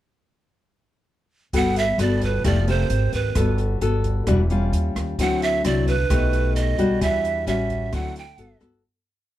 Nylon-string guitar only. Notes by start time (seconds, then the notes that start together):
1.54 G3 B3 F#4 A4
1.99 B3 F#4 A4
2.44 F3 A3 E4 G4
2.67 C4 G4 A#4
3.36 G3 B3 F#4 A4
3.81 B3 F#4 A4
4.27 E3 G3 D4 F#4
4.50 G3 C#4 F4
5.19 D3 F#3 C4 E4
5.64 F#3 C4 E4
6.10 B2 A3 D#4 G4
6.79 G3 D4 F#4
7.01 E3
7.47 G3 C#4 F#4
7.92 D3 F#3 C4 E4
8.38 B3 F#4 A4
8.60 B3 F#4 A4